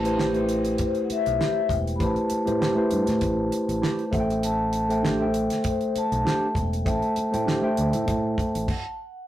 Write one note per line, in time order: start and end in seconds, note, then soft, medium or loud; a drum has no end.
0.00 0.75 A1 medium
0.00 0.03 A3 medium
0.00 0.30 A3 medium
0.00 0.04 E4 medium
0.00 0.31 E4 medium
0.00 0.05 G4 medium
0.00 0.05 B4 medium
0.00 0.06 C5 medium
0.00 0.21 A5 medium
0.05 0.31 G4 medium
0.05 0.32 B4 medium
0.05 0.32 C5 medium
0.05 closed hi-hat soft
0.18 0.39 E4 medium
0.18 0.39 G4 medium
0.18 0.40 C5 medium
0.18 0.82 G5 medium
0.18 snare medium
0.33 1.41 A3 medium
0.33 1.41 E4 medium
0.33 1.41 G4 medium
0.33 1.42 B4 medium
0.33 1.42 C5 medium
0.33 closed hi-hat soft
0.49 closed hi-hat medium
0.65 closed hi-hat medium
0.78 1.05 C5 medium
0.78 kick medium
0.78 closed hi-hat medium
0.95 closed hi-hat soft
1.05 1.10 F#5 medium
1.10 1.73 E5 medium
1.10 muted fingered electric bass stroke soft
1.10 closed hi-hat medium
1.26 1.39 B1 medium
1.26 closed hi-hat soft
1.39 1.60 E4 medium
1.39 1.61 G4 medium
1.39 1.61 C5 medium
1.39 snare loud
1.69 1.97 E1 medium
1.69 1.96 G5 medium
1.69 kick medium
1.69 closed hi-hat medium
1.87 closed hi-hat soft
1.96 2.41 A3 medium
1.96 2.41 E4 medium
1.96 2.41 G4 medium
1.96 2.01 B5 medium
2.00 2.15 A1 medium
2.00 2.42 B4 medium
2.00 2.42 C5 medium
2.00 4.10 A5 medium
2.00 kick loud
2.00 closed hi-hat medium
2.16 closed hi-hat soft
2.30 muted fingered electric bass stroke soft
2.30 closed hi-hat medium
2.45 2.74 A2 medium
2.45 2.73 A3 medium
2.45 2.73 E4 medium
2.45 2.73 G4 medium
2.45 2.74 B4 medium
2.45 2.74 C5 medium
2.45 closed hi-hat soft
2.60 2.82 E4 medium
2.60 2.82 G4 medium
2.60 2.82 C5 medium
2.60 snare medium
2.75 3.83 A3 medium
2.75 3.83 E4 medium
2.75 3.84 G4 medium
2.75 3.84 B4 medium
2.75 3.84 C5 medium
2.91 3.06 G2 medium
2.91 closed hi-hat medium
3.07 3.21 A2 medium
3.07 snare soft
3.07 closed hi-hat medium
3.21 3.49 A1 medium
3.21 kick medium
3.21 closed hi-hat medium
3.52 closed hi-hat medium
3.69 3.81 A1 medium
3.69 closed hi-hat soft
3.82 4.03 E4 medium
3.82 4.03 G4 medium
3.82 4.04 C5 medium
3.82 snare medium
3.99 closed hi-hat soft
4.11 5.47 A1 medium
4.11 4.80 A3 medium
4.11 4.80 A4 medium
4.11 4.81 C5 medium
4.11 4.81 E5 medium
4.11 4.20 F#5 medium
4.11 kick medium
4.11 closed hi-hat medium
4.20 4.84 G5 medium
4.30 closed hi-hat soft
4.43 5.06 A5 loud
4.43 closed hi-hat medium
4.73 closed hi-hat medium
4.89 5.16 A3 medium
4.89 5.16 A4 medium
4.89 5.17 C5 medium
4.89 5.17 E5 medium
4.89 5.17 G5 medium
4.89 closed hi-hat soft
5.03 5.24 D4 medium
5.03 5.25 G4 medium
5.03 5.25 C5 medium
5.03 5.67 G5 medium
5.03 snare loud
5.19 6.26 A3 medium
5.19 6.27 A4 medium
5.19 6.27 C5 medium
5.19 6.27 E5 medium
5.19 6.28 G5 medium
5.34 closed hi-hat medium
5.50 snare soft
5.50 closed hi-hat medium
5.64 5.97 C5 medium
5.64 kick medium
5.64 closed hi-hat medium
5.81 closed hi-hat soft
5.96 6.53 A5 medium
5.96 muted fingered electric bass stroke soft
5.96 closed hi-hat medium
6.12 6.24 B1 medium
6.12 closed hi-hat soft
6.25 6.46 D4 medium
6.25 6.46 G4 medium
6.25 6.47 C5 medium
6.25 snare loud
6.55 6.83 E1 medium
6.55 6.85 G5 medium
6.55 kick medium
6.55 closed hi-hat medium
6.73 closed hi-hat soft
6.85 7.01 A1 medium
6.85 7.27 A3 medium
6.85 7.27 A4 medium
6.85 7.27 C5 medium
6.85 7.28 E5 medium
6.85 7.28 G5 medium
6.85 8.96 A5 medium
6.85 kick loud
6.85 closed hi-hat medium
7.02 closed hi-hat soft
7.16 muted fingered electric bass stroke soft
7.16 closed hi-hat medium
7.31 7.60 A2 medium
7.31 7.59 A3 medium
7.31 7.59 A4 medium
7.31 7.59 C5 medium
7.31 7.60 E5 medium
7.31 7.60 G5 medium
7.31 closed hi-hat soft
7.46 7.67 D4 medium
7.46 7.68 G4 medium
7.46 7.68 C5 medium
7.46 snare medium
7.62 8.67 A3 medium
7.62 8.68 A4 medium
7.62 8.68 C5 medium
7.62 8.68 E5 medium
7.62 8.69 G5 medium
7.77 7.92 D2 medium
7.77 closed hi-hat medium
7.93 8.06 A2 medium
7.93 closed hi-hat medium
8.08 8.35 A2 medium
8.08 kick medium
8.08 closed hi-hat medium
8.38 kick medium
8.38 closed hi-hat medium
8.55 8.67 A1 medium
8.55 closed hi-hat medium
8.68 9.26 F#5 medium
8.68 kick medium
8.68 crash medium